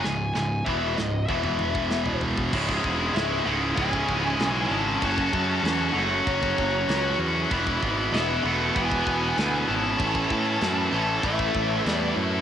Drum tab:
CC |----------------|x---x---x---x---|x---x---x---x---|x---x---x---x---|
SD |o-o---o-----o---|----o-------o---|----o-------o---|----o-------o---|
T2 |---------oo-----|----------------|----------------|----------------|
FT |-------------oo-|----------------|----------------|----------------|
BD |----o---o--o---o|ooo-----ooo-----|ooo-----ooo-----|ooo-----ooo-----|

CC |x---x---x---x---|
SD |----o-------o---|
T2 |----------------|
FT |----------------|
BD |ooo-----ooo-----|